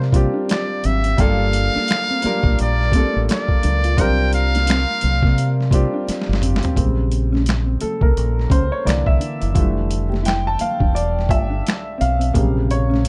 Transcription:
Already playing: C3 G3 C4 D4 F4 A#4
0.02 snare
0.12 G3 C4 D4 F4 G4, kick, closed hi-hat, high conga
0.34 D4
0.48 D5, finger snap, muted clean electric guitar stroke, snare, closed hi-hat
0.83 G#1 C4 E5, closed hi-hat, low conga
1.04 C4, closed hi-hat
1.17 G1 G3 A#3 D4 F4 G4 A4 F5, kick, closed hi-hat, low conga
1.53 muted clean electric guitar stroke, closed hi-hat, muted conga
1.75 D4, muted fingered electric bass stroke, snare, high conga
1.88 finger snap, snare, closed hi-hat
2.09 C4, high conga
2.22 G3 A#3 D4 F4, muted fingered electric bass stroke, muted clean electric guitar stroke, closed hi-hat, muted conga, high conga, low conga
2.26 A#4
2.43 A#1 A#3, kick
2.59 A#1 D5, closed hi-hat
2.81 snare
2.92 G3 A3 C4 D4 F4, kick, closed hi-hat, high conga
2.96 A#3 A4
3.16 A1
3.29 D5, finger snap, muted clean electric guitar stroke, snare, closed hi-hat, muted conga
3.48 kick
3.63 C#2 D4, closed hi-hat, low conga
3.84 F4, closed hi-hat
3.97 C2 G3 C4 D4 F4 A#4 G5, kick, closed hi-hat, muted conga, low conga
4.33 F5, muted clean electric guitar stroke, closed hi-hat
4.55 D4, snare, closed hi-hat, high conga
4.67 C4, finger snap, snare, closed hi-hat, muted conga
4.88 high conga
5.01 C2, muted clean electric guitar stroke, closed hi-hat, muted conga, high conga, low conga
5.23 C3 A#3, kick, snare
5.36 muted clean electric guitar stroke, closed hi-hat, muted conga
5.60 snare
5.71 G3 C4 D4 F4 G4, kick, closed hi-hat, high conga
5.94 D4
6.07 muted fingered electric bass stroke, muted clean electric guitar stroke, snare, closed hi-hat, muted conga
6.22 snare
6.29 G1
6.33 snare
6.42 C4, closed hi-hat, mid tom, muted conga, low conga
6.56 snare
6.63 C4, closed hi-hat, floor tom
6.76 A#1 C#3 G3 A#3 C4, kick, closed hi-hat, low conga
7.12 muted clean electric guitar stroke, closed hi-hat, muted conga
7.33 C#4, snare, high conga
7.46 finger snap, snare, closed hi-hat
7.67 C4
7.81 A4, muted clean electric guitar stroke, muted fingered electric bass stroke, closed hi-hat, muted conga, high conga, low conga
8.01 C2 A#3 A#4, kick
8.17 A#1, closed hi-hat
8.39 snare
8.50 C#2 C#4 C5, kick, closed hi-hat, muted conga, high conga
8.72 C#5
8.85 C2 D3 E3 A#3 D5, muted clean electric guitar stroke, closed hi-hat, muted conga
8.89 finger snap, snare
9.06 C2 E5, kick
9.20 D4, closed hi-hat
9.41 F#1 E4, closed hi-hat
9.54 F1 D3 E3 G3 A3 F4, kick, closed hi-hat, low conga
9.90 muted clean electric guitar stroke, closed hi-hat
10.10 G4, high conga
10.14 snare
10.23 E4 G5, closed hi-hat
10.28 finger snap, snare
10.47 A5
10.59 F5, muted clean electric guitar stroke, muted fingered electric bass stroke, closed hi-hat, muted conga, high conga, low conga
10.80 E1 D4, kick
10.94 D5, muted clean electric guitar stroke, closed hi-hat, muted conga
11.19 snare
11.29 G1 F4 E5, kick, closed hi-hat, muted conga, high conga
11.50 D4
11.64 muted clean electric guitar stroke, closed hi-hat
11.68 finger snap, snare
11.98 B1 C4 F5, closed hi-hat
12.19 C4, closed hi-hat
12.34 A#1 C3 C#3 G3 A#3, kick, closed hi-hat, low conga
12.70 C#5, muted clean electric guitar stroke, closed hi-hat
12.90 C#4, snare, high conga
13.05 closed hi-hat

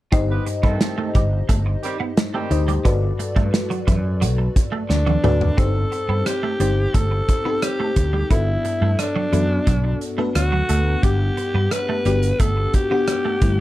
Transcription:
0.12 G1 G2 C4 D#4 G4 C5 D#5, kick, closed hi-hat
0.30 B3 G4 B4
0.47 muted clean electric guitar stroke, closed hi-hat
0.63 G2 D#3 A3 B3 C4 A4, kick
0.81 muted clean electric guitar stroke, snare, closed hi-hat
0.98 A3
1.15 G1 G3, kick, closed hi-hat
1.49 G1 A3, kick, closed hi-hat
1.66 muted clean electric guitar stroke
1.83 D#3 G3 C4 G4, closed hi-hat
2.00 B3
2.17 snare, closed hi-hat
2.34 D#3 G3 A3 C4 G4
2.50 D2 D#4 G4 C5 D#5, muted clean electric guitar stroke, closed hi-hat
2.68 G3, closed hi-hat
2.85 G1 G2 B3 F#4 A4 B4 D5, kick, closed hi-hat
3.19 muted clean electric guitar stroke, closed hi-hat
3.36 G2 A3, kick
3.53 muted clean electric guitar stroke, snare, closed hi-hat
3.70 F#3, closed hi-hat
3.87 F#2 E3, kick, closed hi-hat
4.21 B1 F#3, closed hi-hat
4.38 muted clean electric guitar stroke
4.56 kick, closed hi-hat
4.72 A3
4.89 D2 D4, muted clean electric guitar stroke, snare
5.06 F#3, high tom
5.23 D2 A3 F#4 A4 B4 D5, mid tom
5.41 floor tom
5.57 G1 G2 C4 D#4 G4 A4 C5, kick, closed hi-hat
5.92 muted clean electric guitar stroke, closed hi-hat
6.09 G2 B3
6.26 G4, muted clean electric guitar stroke, cross-stick, closed hi-hat
6.43 A3
6.60 G1 G3 C4 D#4 G4 C5, closed hi-hat
6.94 G1 A3 A4, kick, closed hi-hat
7.11 muted clean electric guitar stroke
7.29 kick, closed hi-hat
7.45 B3 C4 D#4 G4 A4
7.62 G4, cross-stick, closed hi-hat
7.80 A3
7.96 D2, muted clean electric guitar stroke, kick, closed hi-hat
8.13 G3
8.30 G1 G2 B3 D4 E4 F#4 A4, kick, closed hi-hat
8.65 muted clean electric guitar stroke, closed hi-hat
8.81 G2 A3
8.99 D4, muted clean electric guitar stroke, cross-stick, closed hi-hat
9.16 F#3
9.32 F#2 E3 B3 D4 F#4 A4, closed hi-hat
9.67 B1 F#3, kick, closed hi-hat
9.84 muted clean electric guitar stroke
10.01 closed hi-hat
10.18 A3 B3 D4 F#4 B4
10.35 D2 F#4, muted clean electric guitar stroke, cross-stick, closed hi-hat
10.52 F#3
10.69 D2 A3, closed hi-hat
11.03 G1 G2 G3 B3 D4 G4 F#5, kick, closed hi-hat
11.37 muted clean electric guitar stroke, closed hi-hat
11.54 G2 B3
11.71 B4, muted clean electric guitar stroke, cross-stick, closed hi-hat
11.89 A3
12.05 G1 G3 B3 D4 F#4 G4, closed hi-hat
12.22 closed hi-hat
12.40 G1 A3 A4, kick, closed hi-hat
12.57 muted clean electric guitar stroke
12.74 G4, kick, closed hi-hat
12.91 B3 D4 G4 F#5
13.07 cross-stick, closed hi-hat
13.25 A3
13.41 G1 G2 G3 A3 C4 E4, muted clean electric guitar stroke, kick, closed hi-hat

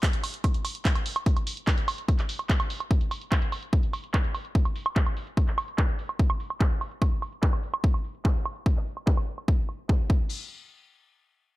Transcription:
0.03 kick, clap, closed hi-hat
0.13 closed hi-hat
0.24 open hi-hat, high woodblock
0.34 closed hi-hat
0.44 kick, closed hi-hat, high woodblock
0.54 closed hi-hat
0.65 open hi-hat, high woodblock
0.75 closed hi-hat
0.85 kick, clap, closed hi-hat
0.95 closed hi-hat, high woodblock
1.06 open hi-hat
1.16 closed hi-hat, high woodblock
1.26 kick, closed hi-hat
1.37 closed hi-hat, high woodblock
1.47 open hi-hat
1.57 closed hi-hat
1.67 kick, clap, closed hi-hat, high woodblock
1.78 closed hi-hat
1.88 open hi-hat, high woodblock
1.98 closed hi-hat
2.08 kick, closed hi-hat, high woodblock
2.19 clap, closed hi-hat
2.29 open hi-hat
2.39 closed hi-hat, high woodblock
2.50 kick, clap, closed hi-hat
2.60 closed hi-hat, high woodblock
2.70 open hi-hat
2.80 closed hi-hat, high woodblock
2.91 kick, closed hi-hat
3.01 closed hi-hat
3.11 open hi-hat, high woodblock
3.21 closed hi-hat
3.32 kick, clap, closed hi-hat, high woodblock
3.42 closed hi-hat
3.52 open hi-hat, high woodblock
3.63 closed hi-hat
3.73 kick, closed hi-hat
3.83 closed hi-hat
3.93 open hi-hat, high woodblock
4.04 closed hi-hat
4.14 kick, clap, closed hi-hat, high woodblock
4.24 closed hi-hat
4.35 open hi-hat, high woodblock
4.45 closed hi-hat
4.55 kick, closed hi-hat
4.65 closed hi-hat, high woodblock
4.76 open hi-hat
4.86 closed hi-hat, high woodblock
4.96 kick, clap, closed hi-hat
5.06 closed hi-hat, high woodblock
5.17 open hi-hat
5.27 closed hi-hat
5.37 kick, closed hi-hat, high woodblock
5.48 clap, closed hi-hat
5.58 open hi-hat, high woodblock
5.68 closed hi-hat
5.78 kick, clap, high woodblock
5.89 closed hi-hat
5.99 open hi-hat
6.09 closed hi-hat, high woodblock
6.19 kick
6.30 closed hi-hat, high woodblock
6.40 open hi-hat
6.50 closed hi-hat, high woodblock
6.61 kick, clap
6.71 closed hi-hat
6.81 open hi-hat, high woodblock
6.91 closed hi-hat
7.02 kick, high woodblock
7.22 open hi-hat, high woodblock
7.33 closed hi-hat
7.43 kick, clap
7.53 high woodblock
7.63 open hi-hat
7.74 closed hi-hat, high woodblock
7.84 kick
7.94 high woodblock
8.04 open hi-hat
8.15 closed hi-hat
8.25 kick, clap, high woodblock
8.46 open hi-hat, high woodblock
8.56 closed hi-hat
8.66 kick, high woodblock
8.76 clap
8.87 open hi-hat
8.97 closed hi-hat, high woodblock
9.07 kick, clap
9.17 high woodblock
9.28 open hi-hat
9.38 closed hi-hat, high woodblock
9.48 kick
9.69 open hi-hat, high woodblock
9.79 closed hi-hat
9.89 kick, clap, high woodblock
10.10 kick

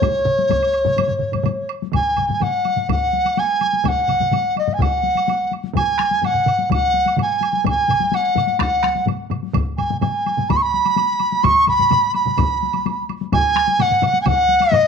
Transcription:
Already playing: C#5
0.02 taiko, taiko low-mid, taiko mid, taiko high, high woodblock
0.25 taiko low-mid, taiko mid
0.39 taiko high
0.49 taiko, taiko low-mid, taiko mid, taiko high, high woodblock
0.63 high woodblock
0.74 high woodblock
0.85 taiko low-mid, taiko mid, taiko high
0.96 taiko low-mid, taiko mid, taiko high, high woodblock
1.08 taiko low-mid, taiko mid
1.19 taiko low-mid, taiko mid
1.32 taiko low-mid, taiko mid, taiko high, high woodblock
1.44 taiko low-mid, taiko mid, taiko high, high woodblock
1.69 high woodblock
1.82 taiko high
1.92 G#5, taiko, taiko low-mid, taiko mid, taiko high, high woodblock
2.16 taiko low-mid, taiko mid, taiko high, high woodblock
2.29 taiko low-mid, taiko mid, taiko high
2.34 G#5
2.40 F#5, taiko low-mid, taiko mid, taiko high, high woodblock
2.65 taiko high, high woodblock
2.76 taiko low-mid, taiko mid, taiko high
2.89 F#5, taiko, taiko low-mid, taiko mid, taiko high, high woodblock
3.13 taiko high
3.25 taiko high, high woodblock
3.37 G#5, taiko high, high woodblock
3.61 taiko high, high woodblock
3.73 taiko high
3.84 F#5, taiko, taiko low-mid, taiko mid, taiko high, high woodblock
4.08 taiko low-mid, taiko mid, taiko high, high woodblock
4.20 taiko low-mid, taiko mid, taiko high
4.31 taiko low-mid, taiko mid, taiko high, high woodblock
4.56 D#5, taiko high, high woodblock
4.67 taiko low-mid, taiko mid, taiko high
4.73 G#5
4.79 F#5, taiko, taiko low-mid, taiko mid, taiko high, high woodblock
5.03 taiko high
5.15 taiko high, high woodblock
5.28 taiko high, high woodblock
5.51 taiko high, high woodblock
5.64 taiko high
5.74 G#5, taiko, taiko low-mid, taiko mid, taiko high, high woodblock
5.98 taiko rim, taiko high, high woodblock
6.11 taiko high
6.22 F#5, taiko low-mid, taiko mid, taiko high, high woodblock
6.34 taiko low-mid, taiko mid
6.46 taiko low-mid, taiko mid, high woodblock
6.59 taiko high
6.69 F#5, taiko, taiko low-mid, taiko mid, taiko high, high woodblock
6.94 taiko high
7.06 taiko high, high woodblock
7.16 taiko low-mid, taiko mid, taiko high, high woodblock
7.22 G#5
7.41 taiko high, high woodblock
7.53 taiko high
7.64 taiko, taiko low-mid, taiko mid, taiko high, high woodblock
7.69 G#5
7.88 taiko low-mid, taiko mid, taiko high, high woodblock
8.00 taiko high
8.12 F#5, taiko high, high woodblock
8.35 taiko low-mid, taiko mid, taiko high, high woodblock
8.47 taiko high
8.59 F#5, taiko rim, taiko, taiko high, high woodblock
8.83 taiko rim, taiko high
8.95 taiko high
9.06 taiko low-mid, taiko mid, taiko high, high woodblock
9.30 taiko low-mid, taiko mid, taiko high, high woodblock
9.43 taiko high
9.54 taiko, taiko low-mid, taiko mid, taiko high, high woodblock
9.77 G#5, taiko low-mid, taiko mid, taiko high, high woodblock
9.90 taiko low-mid, taiko mid, taiko high
10.00 G#5, taiko low-mid, taiko mid, taiko high, high woodblock
10.26 taiko high, high woodblock
10.38 taiko low-mid, taiko mid, taiko high
10.49 B5, taiko, taiko low-mid, taiko mid, taiko high, high woodblock
10.56 C#6
10.62 B5
10.74 taiko high
10.85 taiko high, high woodblock
10.96 taiko high, high woodblock
11.19 taiko high, high woodblock
11.32 taiko high
11.43 C#6, taiko, taiko low-mid, taiko mid, taiko high, high woodblock
11.67 B5, taiko low-mid, taiko mid, taiko high, high woodblock
11.79 taiko low-mid, taiko mid, taiko high
11.91 taiko low-mid, taiko mid, taiko high, high woodblock
12.14 B5, taiko high, high woodblock
12.25 taiko low-mid, taiko mid, taiko high
12.37 taiko, taiko low-mid, taiko mid, taiko high, high woodblock
12.63 taiko high
12.73 taiko high, high woodblock
12.86 taiko high, high woodblock
13.09 taiko high, high woodblock
13.21 taiko high
13.32 G#5, taiko, taiko low-mid, taiko mid, taiko high, high woodblock
13.55 taiko rim, taiko high, high woodblock
13.67 taiko high
13.79 F#5, taiko low-mid, taiko mid, taiko high, high woodblock
13.90 taiko low-mid, taiko mid
14.02 taiko low-mid, taiko mid, taiko high, high woodblock
14.13 taiko high
14.21 G#5
14.26 F#5, taiko, taiko low-mid, taiko mid, taiko high, high woodblock
14.49 taiko high
14.60 taiko high, high woodblock
14.72 D#5, taiko low-mid, taiko mid, taiko high, high woodblock

